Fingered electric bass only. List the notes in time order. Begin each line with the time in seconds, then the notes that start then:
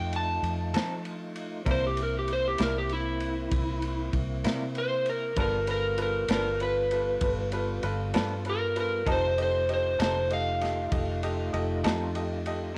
Already playing: F2
0.43 F2
0.74 F3
1.66 C2
2.60 C2
3.52 C2
4.13 C2
4.44 C3
5.36 G1
6.28 G1
7.21 G1
7.83 G1
8.15 G2
9.06 F1
10.00 F1
10.92 F1
11.54 F1
11.84 F2